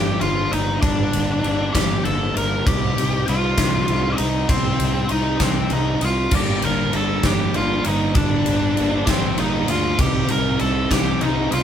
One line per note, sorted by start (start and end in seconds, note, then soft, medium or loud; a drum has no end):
0.00 0.16 G1 loud
0.00 0.82 G2 medium
0.00 0.20 D3 medium
0.00 0.22 G3 medium
0.00 0.22 A#3 medium
0.00 0.22 D4 medium
0.00 0.21 G4 medium
0.00 0.20 G5 loud
0.21 0.46 G1 loud
0.21 0.82 D3 medium
0.21 0.53 G3 medium
0.21 0.51 A#3 medium
0.21 0.49 D4 medium
0.21 0.50 F4 medium
0.21 0.53 F5 loud
0.21 ride medium
0.51 0.77 G1 loud
0.51 0.83 G3 medium
0.51 0.83 A#3 medium
0.51 0.84 D4 medium
0.51 0.81 D#4 medium
0.51 0.81 D#5 loud
0.51 ride medium
0.81 1.07 G1 medium
0.81 1.44 G2 medium
0.81 1.42 D3 loud
0.81 1.14 G3 loud
0.81 1.12 A#3 loud
0.81 1.70 D4 medium
0.81 1.11 D4 loud
0.81 1.77 D5 loud
0.81 kick loud
0.81 ride loud
1.12 1.38 G1 medium
1.12 1.44 G3 medium
1.12 1.44 A#3 medium
1.12 1.44 D4 medium
1.12 ride medium
1.43 1.69 G1 medium
1.43 2.03 D3 medium
1.43 1.77 G3 medium
1.43 1.75 A#3 medium
1.43 1.74 D4 medium
1.43 ride medium
1.74 1.99 G1 loud
1.74 2.05 G3 medium
1.74 2.05 A#3 medium
1.74 2.06 D4 medium
1.74 2.03 G4 medium
1.74 2.06 G5 medium
1.74 kick medium
1.74 snare loud
1.74 ride loud
2.05 2.30 G1 loud
2.05 2.64 D3 medium
2.05 2.37 G3 medium
2.05 2.35 A#3 medium
2.05 2.34 D4 medium
2.05 2.33 A4 medium
2.05 2.36 A5 medium
2.05 ride medium
2.35 2.61 G1 loud
2.35 2.66 G3 medium
2.35 2.65 A#3 medium
2.35 2.64 D4 medium
2.35 2.65 A#4 medium
2.35 2.68 A#5 medium
2.35 ride medium
2.65 2.91 C2 loud
2.65 3.27 C3 loud
2.65 2.99 G3 loud
2.65 2.97 C4 loud
2.65 2.96 D#4 loud
2.65 3.24 G4 medium
2.65 3.29 G5 loud
2.65 kick loud
2.65 ride loud
2.96 3.22 C2 loud
2.96 3.28 G3 medium
2.96 3.29 C4 medium
2.96 3.30 D#4 medium
2.96 ride medium
3.28 3.53 C2 medium
3.28 3.87 C3 medium
3.28 3.60 G3 medium
3.28 3.58 C4 medium
3.28 3.57 D#4 loud
3.28 4.09 F4 medium
3.28 4.15 F5 loud
3.28 ride medium
3.58 3.83 C2 medium
3.58 3.89 G3 medium
3.58 3.89 C4 medium
3.58 3.89 D#4 medium
3.58 kick medium
3.58 snare loud
3.58 ride loud
3.88 4.13 C2 loud
3.88 4.47 C3 medium
3.88 4.21 G3 medium
3.88 4.19 C4 medium
3.88 4.17 D#4 medium
3.88 ride medium
4.12 4.16 D5 medium
4.17 4.44 C2 medium
4.17 4.49 C4 medium
4.17 4.47 D#4 medium
4.17 4.50 D#4 medium
4.17 4.49 D#5 medium
4.17 ride medium
4.21 4.49 G3 medium
4.48 4.74 C2 loud
4.48 5.09 C3 medium
4.48 4.83 G3 loud
4.48 5.07 C4 medium
4.48 4.80 C4 loud
4.48 4.78 D#4 loud
4.48 5.11 C5 loud
4.48 kick loud
4.48 ride loud
4.80 5.05 C2 medium
4.80 5.11 G3 medium
4.80 5.11 C4 medium
4.80 5.12 D#4 medium
4.80 ride medium
5.09 5.35 C2 medium
5.09 5.69 C3 medium
5.09 5.43 G3 medium
5.09 5.41 C4 medium
5.09 5.39 D#4 medium
5.09 5.42 D#5 medium
5.09 ride medium
5.40 5.65 C2 medium
5.40 5.71 G3 medium
5.40 5.71 C4 medium
5.40 5.72 D#4 medium
5.40 5.72 C5 medium
5.40 kick medium
5.40 snare loud
5.40 ride loud
5.70 5.96 C2 medium
5.70 6.30 C3 medium
5.70 6.04 G3 medium
5.70 6.01 C4 medium
5.70 6.00 D#4 medium
5.70 6.03 D#5 medium
5.70 ride medium
6.01 6.26 C2 medium
6.01 6.33 G3 medium
6.01 6.31 C4 medium
6.01 6.30 D#4 medium
6.01 6.35 F5 medium
6.01 ride medium
6.05 6.32 F4 medium
6.31 6.57 G1 medium
6.31 8.14 G2 medium
6.31 6.91 D3 loud
6.31 6.64 G3 loud
6.31 6.63 A#3 loud
6.31 6.61 D4 loud
6.31 kick loud
6.31 crash loud
6.36 6.63 G4 medium
6.36 6.65 G5 medium
6.61 6.88 G1 loud
6.61 6.93 G3 medium
6.61 6.94 A#3 medium
6.61 6.95 D4 medium
6.61 6.92 A#4 medium
6.61 6.95 A#5 medium
6.61 ride medium
6.93 7.18 G1 medium
6.93 7.53 D3 medium
6.93 7.27 G3 medium
6.93 7.25 A#3 medium
6.93 7.24 D4 medium
6.93 7.23 A4 medium
6.93 7.26 A5 loud
6.93 ride medium
7.23 7.48 G1 loud
7.23 8.13 G2 medium
7.23 8.14 D3 medium
7.23 7.56 A#3 medium
7.23 7.56 D4 medium
7.23 7.53 G4 medium
7.23 7.56 G5 medium
7.23 kick medium
7.23 snare loud
7.23 ride loud
7.28 7.55 G3 medium
7.54 7.80 G1 loud
7.54 8.14 D3 medium
7.54 7.88 G3 medium
7.54 7.85 A#3 medium
7.54 7.84 D4 medium
7.54 7.84 F4 medium
7.54 7.87 F5 medium
7.54 ride medium
7.84 8.11 G1 medium
7.84 8.16 G3 medium
7.84 8.16 A#3 medium
7.84 8.16 D4 medium
7.84 8.14 D#4 medium
7.84 8.17 D#5 medium
7.84 ride medium
8.15 8.40 G1 loud
8.15 8.76 G2 medium
8.15 8.75 D3 loud
8.15 8.48 G3 loud
8.15 8.46 A#3 medium
8.15 9.03 D4 medium
8.15 8.45 D4 loud
8.15 9.09 D5 loud
8.15 kick loud
8.15 ride loud
8.46 8.72 G1 medium
8.46 8.77 G3 medium
8.46 8.77 A#3 medium
8.46 8.78 D4 medium
8.46 ride medium
8.77 9.02 G1 medium
8.77 9.36 D3 medium
8.77 9.09 G3 medium
8.77 9.07 A#3 medium
8.77 9.05 D4 medium
8.77 ride medium
9.06 9.32 G1 loud
9.06 9.38 G3 medium
9.06 9.37 A#3 medium
9.06 9.37 C4 medium
9.06 9.39 D4 medium
9.06 9.40 C5 medium
9.06 kick medium
9.06 snare loud
9.06 ride loud
9.11 9.99 G2 medium
9.11 9.99 D3 medium
9.37 9.63 G1 medium
9.37 9.97 D3 medium
9.37 9.70 G3 medium
9.37 9.68 A#3 medium
9.37 9.67 D4 medium
9.37 9.67 D#4 medium
9.37 9.67 D#5 loud
9.37 ride medium
9.68 9.93 D2 medium
9.68 9.99 G3 medium
9.68 9.98 A#3 medium
9.68 9.97 D4 medium
9.68 9.98 F4 medium
9.68 10.00 F5 medium
9.68 ride medium
9.98 10.24 C2 medium
9.98 10.58 C3 loud
9.98 10.31 G3 loud
9.98 10.30 C4 loud
9.98 10.29 D#4 loud
9.98 10.28 G4 medium
9.98 10.28 G5 loud
9.98 kick loud
9.98 ride loud
10.28 10.55 C2 loud
10.28 10.59 G3 medium
10.28 10.60 C4 medium
10.28 10.61 D#4 medium
10.28 10.59 A#4 medium
10.28 10.61 A#5 loud
10.28 ride medium
10.58 10.85 C2 medium
10.58 11.20 C3 medium
10.58 10.93 G3 medium
10.58 10.91 C4 medium
10.58 10.90 D#4 medium
10.58 10.89 A4 medium
10.58 10.92 A5 medium
10.58 ride medium
10.63 10.94 C3 medium
10.90 11.16 C2 loud
10.90 11.22 G3 medium
10.90 11.22 C4 medium
10.90 11.23 D#4 medium
10.90 11.20 G4 medium
10.90 11.24 G5 medium
10.90 kick medium
10.90 snare loud
10.90 ride loud
10.95 11.63 C3 medium
11.21 11.47 C2 loud
11.21 11.63 C3 medium
11.21 11.53 G3 medium
11.21 11.51 C4 medium
11.21 11.50 D#4 medium
11.21 11.51 D#4 medium
11.21 11.53 D#5 medium
11.21 ride medium
11.51 11.63 C2 loud
11.51 11.63 G3 medium
11.51 11.63 C4 medium
11.51 11.63 D#4 medium
11.51 11.63 F4 medium
11.51 11.63 F5 medium
11.51 ride medium